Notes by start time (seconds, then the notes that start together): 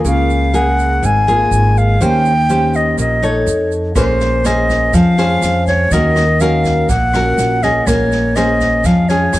Already playing: A#3 F4 G#4
0.05 C#2 C#3 F5, shaker
0.30 shaker
0.54 A#3 G#4 F#5, shaker
0.79 shaker
1.03 G#1 G#2 G#5, shaker
1.27 A#3 F4 G#4, shaker
1.51 G#1, shaker
1.77 F5, shaker
2.00 D#2 D#3 C#4 G4 C5 G5, shaker
2.25 shaker
2.49 C#4 G4 C5, shaker
2.74 D#5, shaker
2.98 A#1 A#2 D#5, shaker
3.23 D#4 A4 C#5, shaker
3.46 F2, shaker
3.72 shaker
3.95 A#1 A#3 C#4 G#4 C5, kick, cross-stick, snare, shaker
4.20 snare, shaker
4.45 C#4 G#4 C5 D#5, cross-stick, snare, shaker
4.69 kick, snare, shaker
4.93 F2 F3 F5, kick, snare, shaker
5.18 C#4 G#4 C5, snare, shaker
5.42 F2, cross-stick, snare, shaker
5.67 C#5, kick, snare, shaker
5.91 D#2 D#3 C#4 F#4 A#4 D#5, kick, snare, shaker
6.16 cross-stick, snare, shaker
6.40 C#4 F#4 A#4 F5, snare, shaker
6.64 kick, snare, shaker
6.89 A#1 A#2 F#5, kick, snare, shaker
7.13 C#4 F#4 A#4, cross-stick, snare, shaker
7.38 A#1, snare, shaker
7.62 C#4 G#4 D#5, kick, snare, shaker
7.87 A#1 A#3 C#5, kick, cross-stick, snare, shaker
8.12 snare, shaker
8.36 C#4 G#4 C5 D#5, cross-stick, snare, shaker
8.60 kick, snare, shaker
8.84 F2 F3 F5, kick, snare, shaker
9.09 C#4 G#4 C#5, snare, shaker
9.33 F2, cross-stick, snare, shaker